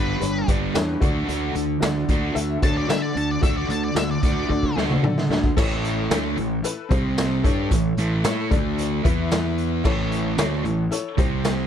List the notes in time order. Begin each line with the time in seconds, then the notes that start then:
Already playing: G1 G3 B3 D4 G4 B4 D5
0.20 G1 G3 D4 G4 B4 C#5, closed hi-hat
0.48 G1 G3 B3 D4 G4 B4 D5, kick, closed hi-hat
0.74 E2 G3 D4 G4 B4 C#5, snare, closed hi-hat, tambourine
1.00 D2 D3 D4 F#4 A4 D5, kick, closed hi-hat
1.28 D2 D3 D4 F#4, closed hi-hat
1.55 D2 D3 D4, closed hi-hat
1.81 D2 D3 D4 F#4 A4 D5, snare, closed hi-hat, tambourine
2.08 D2 D3 D4 F#4, kick, closed hi-hat
2.34 D2 D3 D4 F#4 A4 E5, closed hi-hat
2.62 D2 D3 D4 F#4 A4 C#5 A5, kick, closed hi-hat
2.77 D5
2.88 D3 D4 F#4 A4 D5 E5, snare, closed hi-hat, tambourine
3.02 D5
3.15 D2 D3 D4 A5, closed hi-hat
3.31 D5
3.41 D2 D3 D4 F#4 A4 D5 E5, kick, closed hi-hat
3.57 D5
3.69 D2 D3 D4 A5, closed hi-hat
3.84 D5
3.95 D2 D3 D4 F#4 A4 D5 E5, snare, closed hi-hat, tambourine
4.11 D5
4.23 D2 D3 D4 F#4 D5, kick, closed hi-hat
4.49 D2 D3 D4 F#4 A4 D5, kick
4.63 kick
4.76 D2 D3 D4 F#4 A4 D5, snare
4.90 mid tom
5.03 D3 D4 F#4 A4 D5, mid tom
5.18 snare
5.29 D2 D3 D4, snare
5.44 kick
5.57 A1 A2 E3 A3 E4 A4 C#5, kick, crash
5.84 closed hi-hat
6.10 D2 D3 A3 D4 E4 A4 C#5, snare, closed hi-hat, tambourine
6.37 A1 A2 E3, closed hi-hat
6.63 E4 A4 B4, closed hi-hat
6.89 C2 C3 G3 C4 G4 C5, kick, closed hi-hat
7.18 snare, closed hi-hat, tambourine
7.43 G2 G3 D4 E4 G4 A4 C#5, kick, closed hi-hat
7.71 A1 A2 E3, kick, closed hi-hat
7.97 A1 A2 E3 A3, closed hi-hat
8.24 A2 A3 E4 A4 C#5, snare, closed hi-hat, tambourine
8.50 D2 D3 A3 D4 A4 D5, kick, closed hi-hat
8.78 closed hi-hat
9.03 E2 E3 B3 E4 B4 E5, kick, closed hi-hat
9.31 snare, closed hi-hat, tambourine
9.58 closed hi-hat
9.84 A1 A2 E3 A3 E4 A4 C#5, kick, crash
10.12 closed hi-hat
10.38 D2 D3 A3 D4 E4 A4 C#5, snare, closed hi-hat, tambourine
10.64 A1 A2 E3, closed hi-hat
10.91 E4 A4 C#5, closed hi-hat
11.17 C2 C3 G3 C4 G4 C5, kick, closed hi-hat
11.44 snare, closed hi-hat, tambourine